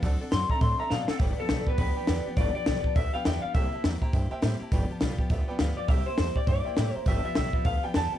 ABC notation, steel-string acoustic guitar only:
X:1
M:4/4
L:1/8
Q:"Swing" 1/4=205
K:Gmix
V:1 name="Steel-string acoustic guitar"
[D,^F,CDA] [CDA] [D,F,CDA] [CDA] [F,CDA] [CDA] [D,F,CDA] [CDA] | [G,,D,F,B,DG] [F,B,DG] [G,,D,F,B,DG] [F,B,DG] [F,B,DG] [F,B,DG] [G,,D,F,B,DG] [F,B,DG] | [G,,D,F,B,DG] [F,B,DG] [G,,D,F,B,DG] [F,B,DG] [F,B,DG] [F,B,DG] [G,,D,F,B,DG] [F,B,DG] | [C,G,_B,EG] [B,EG] [C,G,B,EG] [B,EG] [G,B,EG] [B,EG] [C,G,B,EG] [B,EG] |
[G,,D,F,B,FG] [F,B,FG] [G,,D,F,B,FG] [F,B,FG] [F,B,FG] [F,B,FG] [G,,D,F,B,FG] [F,B,FG] | [C,G,_B,EG] [B,EG] [C,G,B,EG] [B,EG] [G,B,EG] [B,EG] [C,G,B,EG] [B,EG] | [G,,D,F,B,FG] [F,B,FG] [G,,D,F,B,FG] [F,B,FG] [F,B,FG] [F,B,FG] [G,,D,F,B,FG] [F,B,FG] |]